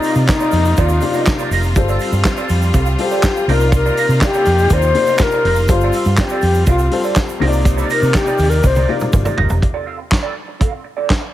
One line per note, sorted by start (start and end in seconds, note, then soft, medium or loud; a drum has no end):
0.00 0.34 C3 medium
0.00 1.74 C3 medium
0.00 0.34 A#3 medium
0.00 1.74 A#3 medium
0.00 0.28 D#4 medium
0.00 0.34 D#4 medium
0.00 1.74 D#4 medium
0.00 0.34 F4 medium
0.00 9.59 F4 medium
0.00 0.35 D5 medium
0.00 1.74 D5 medium
0.00 shaker medium
0.04 0.20 D#4 medium
0.04 0.17 F4 medium
0.04 0.16 A#4 medium
0.04 0.17 D#5 medium
0.04 open hi-hat medium
0.15 0.26 C3 medium
0.15 muted clean electric guitar stroke medium
0.15 shaker medium
0.28 0.81 D#4 medium
0.28 muted clean electric guitar stroke soft
0.28 kick loud
0.28 snare loud
0.28 clap medium
0.28 closed hi-hat medium
0.28 shaker medium
0.40 0.53 D#4 medium
0.40 0.53 F4 medium
0.40 0.53 A#4 medium
0.40 0.53 D5 medium
0.40 shaker medium
0.51 0.73 F2 medium
0.51 muted clean electric guitar stroke soft
0.51 open hi-hat medium
0.51 shaker medium
0.65 muted clean electric guitar stroke soft
0.65 shaker medium
0.77 0.98 D#2 loud
0.77 0.97 D#4 medium
0.77 0.90 F4 medium
0.77 1.28 F4 medium
0.77 0.90 A#4 medium
0.77 0.90 D5 medium
0.77 kick medium
0.77 closed hi-hat medium
0.77 shaker medium
0.89 muted clean electric guitar stroke soft
0.89 shaker medium
1.01 1.57 C3 medium
1.01 1.58 A#3 medium
1.01 1.58 D#4 medium
1.01 1.58 F4 medium
1.01 1.58 D5 medium
1.01 muted clean electric guitar stroke soft
1.01 open hi-hat medium
1.01 shaker medium
1.13 1.27 D#4 medium
1.13 1.27 F4 medium
1.13 1.27 A#4 medium
1.13 1.28 D#5 medium
1.13 shaker soft
1.26 muted clean electric guitar stroke soft
1.26 kick loud
1.26 snare medium
1.26 clap medium
1.26 closed hi-hat medium
1.26 shaker medium
1.39 1.51 D#4 medium
1.39 1.52 F4 medium
1.39 1.52 A#4 medium
1.39 1.53 D5 medium
1.39 shaker medium
1.51 1.76 F1 medium
1.51 1.67 D#4 medium
1.51 1.64 F4 medium
1.51 1.64 A#4 medium
1.51 1.64 D#5 medium
1.51 open hi-hat medium
1.51 shaker soft
1.63 muted clean electric guitar stroke medium
1.63 shaker medium
1.75 1.96 G1 loud
1.75 3.46 G3 medium
1.75 2.50 G3 medium
1.75 3.46 C4 medium
1.75 2.50 F4 medium
1.75 2.51 A4 medium
1.75 2.51 C5 medium
1.75 muted clean electric guitar stroke soft
1.75 kick loud
1.75 closed hi-hat medium
1.75 shaker medium
1.89 2.00 C4 medium
1.89 2.00 F4 medium
1.89 2.01 A4 medium
1.89 2.02 D5 medium
1.89 shaker medium
2.00 2.16 C4 medium
2.00 2.12 F4 medium
2.00 2.12 A4 medium
2.00 2.12 F5 medium
2.00 open hi-hat medium
2.00 shaker medium
2.12 2.23 G2 medium
2.12 muted clean electric guitar stroke soft
2.12 shaker medium
2.24 muted clean electric guitar stroke soft
2.24 kick loud
2.24 snare loud
2.24 clap medium
2.24 closed hi-hat medium
2.24 shaker medium
2.37 2.49 C4 medium
2.37 2.49 F4 medium
2.37 2.50 A4 medium
2.37 2.50 D5 medium
2.37 shaker medium
2.49 2.70 F2 medium
2.49 muted clean electric guitar stroke soft
2.49 open hi-hat medium
2.49 shaker medium
2.62 muted clean electric guitar stroke soft
2.62 shaker medium
2.73 2.95 C2 medium
2.73 2.94 C4 medium
2.73 2.87 F4 medium
2.73 2.86 A4 medium
2.73 2.87 F5 medium
2.73 kick loud
2.73 closed hi-hat medium
2.73 shaker medium
2.86 muted clean electric guitar stroke soft
2.86 shaker medium
2.98 3.48 G3 medium
2.98 3.48 F4 medium
2.98 3.53 G4 medium
2.98 3.48 A4 medium
2.98 3.49 C5 medium
2.98 muted clean electric guitar stroke soft
2.98 open hi-hat medium
3.11 3.23 C4 medium
3.11 3.23 F4 medium
3.11 3.23 A4 medium
3.11 3.23 D5 medium
3.11 shaker soft
3.23 kick loud
3.23 snare loud
3.23 clap medium
3.23 closed hi-hat medium
3.23 shaker medium
3.36 muted clean electric guitar stroke soft
3.36 shaker medium
3.47 3.89 C2 medium
3.47 5.67 C3 medium
3.47 4.27 C3 medium
3.47 5.67 A#3 medium
3.47 4.27 A#3 medium
3.47 3.54 D4 medium
3.47 5.67 D#4 medium
3.47 3.68 D#4 loud
3.47 4.27 F4 medium
3.47 3.61 F4 loud
3.47 3.61 A#4 loud
3.47 3.74 A#4 medium
3.47 5.67 D5 medium
3.47 3.60 D5 loud
3.47 4.27 D5 medium
3.47 open hi-hat medium
3.55 4.30 D#4 medium
3.60 muted clean electric guitar stroke soft
3.60 shaker soft
3.72 4.20 A#4 loud
3.72 muted clean electric guitar stroke soft
3.72 kick loud
3.72 closed hi-hat medium
3.72 shaker medium
3.86 3.97 D#4 medium
3.86 3.97 F4 medium
3.86 3.98 A#4 medium
3.86 3.98 D5 medium
3.86 shaker medium
3.97 4.13 D#4 medium
3.97 4.11 F4 medium
3.97 4.11 A#4 medium
3.97 4.11 D#5 medium
3.97 open hi-hat medium
3.97 shaker medium
4.09 4.19 C3 medium
4.09 muted clean electric guitar stroke soft
4.09 shaker medium
4.21 4.75 G4 loud
4.21 muted clean electric guitar stroke soft
4.21 kick loud
4.21 snare loud
4.21 clap medium
4.21 closed hi-hat medium
4.21 shaker medium
4.34 4.47 D#4 medium
4.34 4.47 F4 medium
4.34 4.47 A#4 medium
4.34 4.47 D5 medium
4.34 shaker medium
4.45 4.67 F2 medium
4.45 muted clean electric guitar stroke soft
4.45 open hi-hat medium
4.45 shaker medium
4.59 muted clean electric guitar stroke soft
4.59 shaker medium
4.70 4.91 D#2 loud
4.70 4.91 D#4 medium
4.70 4.85 F4 medium
4.70 4.85 A#4 medium
4.70 5.24 C5 loud
4.70 4.84 D5 medium
4.70 kick medium
4.70 closed hi-hat medium
4.70 shaker medium
4.82 muted clean electric guitar stroke soft
4.82 shaker medium
4.94 5.50 C3 medium
4.94 5.50 A#3 medium
4.94 5.50 D#4 medium
4.94 5.51 F4 medium
4.94 5.51 D5 medium
4.94 muted clean electric guitar stroke soft
4.94 open hi-hat medium
5.06 5.20 D#4 medium
5.06 5.20 F4 medium
5.06 5.21 A#4 medium
5.06 5.22 D#5 medium
5.06 shaker medium
5.18 kick loud
5.18 snare loud
5.18 clap medium
5.18 closed hi-hat medium
5.18 shaker medium
5.22 5.73 A#4 loud
5.31 5.45 D#4 medium
5.31 5.45 F4 medium
5.31 5.45 A#4 medium
5.31 5.47 D5 medium
5.31 shaker medium
5.45 5.69 F1 medium
5.45 5.65 D#4 medium
5.45 5.57 F4 loud
5.45 5.57 A#4 loud
5.45 5.57 D#5 medium
5.45 open hi-hat medium
5.56 muted clean electric guitar stroke medium
5.56 shaker medium
5.68 5.89 G1 medium
5.68 6.43 G3 medium
5.68 7.40 G3 medium
5.68 7.40 C4 medium
5.68 6.43 F4 medium
5.68 6.18 F4 medium
5.68 6.43 A4 medium
5.68 6.43 C5 medium
5.68 muted clean electric guitar stroke medium
5.68 kick loud
5.68 closed hi-hat medium
5.68 shaker medium
5.81 5.94 C4 medium
5.81 5.95 F4 medium
5.81 5.94 A4 medium
5.81 5.96 D5 medium
5.81 shaker soft
5.92 6.10 C4 medium
5.92 6.08 F4 medium
5.92 6.07 A4 medium
5.92 6.08 F5 medium
5.92 open hi-hat medium
5.92 shaker medium
6.05 6.16 G2 loud
6.05 muted clean electric guitar stroke soft
6.05 shaker medium
6.17 6.64 G4 loud
6.17 muted clean electric guitar stroke medium
6.17 kick loud
6.17 snare loud
6.17 clap loud
6.17 closed hi-hat medium
6.17 shaker medium
6.29 6.43 C4 medium
6.29 6.43 F4 medium
6.29 6.44 A4 medium
6.29 6.44 D5 medium
6.29 shaker soft
6.41 6.63 F2 medium
6.41 open hi-hat medium
6.41 shaker soft
6.54 muted clean electric guitar stroke medium
6.54 shaker medium
6.66 6.88 C2 loud
6.66 6.87 C4 medium
6.66 6.80 F4 medium
6.66 7.14 F4 medium
6.66 6.80 A4 medium
6.66 6.80 F5 medium
6.66 kick loud
6.66 closed hi-hat medium
6.66 shaker medium
6.79 muted clean electric guitar stroke soft
6.79 shaker medium
6.91 7.41 G3 medium
6.91 7.40 F4 medium
6.91 7.41 A4 medium
6.91 7.40 C5 medium
6.91 muted clean electric guitar stroke soft
6.91 open hi-hat medium
7.04 7.16 C4 medium
7.04 7.16 F4 medium
7.04 7.17 A4 medium
7.04 7.17 D5 medium
7.04 shaker medium
7.16 kick loud
7.16 snare loud
7.16 clap medium
7.16 closed hi-hat medium
7.16 shaker medium
7.29 muted clean electric guitar stroke soft
7.29 shaker medium
7.40 7.82 C2 medium
7.40 8.19 C3 loud
7.40 9.61 C3 medium
7.40 8.19 A#3 medium
7.40 9.60 A#3 medium
7.40 9.60 D#4 medium
7.40 8.20 D#4 medium
7.40 7.61 D#4 medium
7.40 8.20 F4 medium
7.40 7.53 F4 medium
7.40 7.52 A#4 loud
7.40 7.47 C5 medium
7.40 9.61 D5 medium
7.40 7.52 D5 loud
7.40 open hi-hat medium
7.48 8.23 D5 loud
7.53 muted clean electric guitar stroke medium
7.53 shaker medium
7.65 muted clean electric guitar stroke soft
7.65 kick loud
7.65 closed hi-hat medium
7.65 shaker medium
7.77 7.89 D#4 medium
7.77 7.90 F4 medium
7.77 7.90 A#4 medium
7.77 7.91 D5 medium
7.77 shaker medium
7.90 8.06 D#4 medium
7.90 8.02 F4 medium
7.90 8.01 A#4 medium
7.90 8.18 A#4 medium
7.90 8.01 D#5 medium
7.90 open hi-hat medium
7.90 shaker medium
8.02 8.12 C3 loud
8.02 muted clean electric guitar stroke soft
8.02 shaker medium
8.14 8.51 G4 loud
8.14 muted clean electric guitar stroke soft
8.14 kick loud
8.14 snare loud
8.14 clap medium
8.14 closed hi-hat medium
8.14 shaker medium
8.27 8.38 D#4 medium
8.27 8.38 F4 medium
8.27 8.38 A#4 medium
8.27 8.38 D5 medium
8.27 shaker medium
8.38 8.59 D#2 medium
8.38 muted clean electric guitar stroke soft
8.38 open hi-hat medium
8.38 shaker soft
8.50 8.68 A#4 loud
8.50 muted clean electric guitar stroke soft
8.50 shaker medium
8.63 8.84 C2 loud
8.63 8.90 C5 loud
8.63 muted clean electric guitar stroke soft
8.63 kick loud
8.63 high tom medium
8.63 shaker medium
8.76 8.87 D#4 medium
8.76 8.88 F4 medium
8.76 8.88 A#4 medium
8.76 8.89 D5 medium
8.76 high tom medium
8.76 shaker medium
8.88 9.44 C3 medium
8.88 9.44 A#3 medium
8.88 9.04 D#4 medium
8.88 9.44 D#4 medium
8.88 9.01 F4 medium
8.88 9.44 F4 medium
8.88 9.00 A#4 medium
8.88 9.44 D5 medium
8.88 9.00 D5 medium
9.00 muted clean electric guitar stroke soft
9.00 mid tom medium
9.00 shaker medium
9.12 9.23 G1 medium
9.12 muted clean electric guitar stroke soft
9.12 kick loud
9.12 mid tom medium
9.12 shaker medium
9.25 9.36 D#4 medium
9.25 9.36 F4 medium
9.25 9.37 A#4 medium
9.25 9.38 D5 medium
9.25 mid tom medium
9.25 shaker medium
9.37 9.48 G1 loud
9.37 9.57 D#4 medium
9.37 9.49 F4 medium
9.37 9.49 A#4 medium
9.37 9.49 D#5 medium
9.37 floor tom loud
9.49 9.60 F1 loud
9.49 muted clean electric guitar stroke medium
9.49 floor tom medium
9.49 shaker medium
9.62 muted clean electric guitar stroke soft
9.62 kick medium
9.62 closed hi-hat medium
9.74 9.85 C4 medium
9.74 9.85 F4 medium
9.74 9.86 A4 medium
9.74 9.87 D5 medium
9.86 10.02 C4 medium
9.86 9.98 F4 medium
9.86 9.97 A4 medium
9.86 9.98 F5 medium
9.99 muted clean electric guitar stroke soft
10.11 muted clean electric guitar stroke soft
10.11 kick loud
10.11 snare loud
10.11 clap medium
10.11 closed hi-hat medium
10.23 10.34 C4 medium
10.23 10.34 F4 medium
10.23 10.34 A4 medium
10.23 10.34 D5 medium
10.35 muted clean electric guitar stroke soft
10.48 muted clean electric guitar stroke soft
10.60 10.80 C4 medium
10.60 10.72 F4 medium
10.60 10.71 A4 medium
10.60 10.72 F5 medium
10.60 kick medium
10.60 closed hi-hat medium
10.72 muted clean electric guitar stroke soft
10.84 muted clean electric guitar stroke soft
10.97 11.08 C4 soft
10.97 11.09 F4 soft
10.97 11.09 A4 soft
10.97 11.09 D5 medium
11.10 muted clean electric guitar stroke soft
11.10 kick loud
11.10 snare medium
11.10 clap medium
11.10 closed hi-hat soft
11.21 muted clean electric guitar stroke soft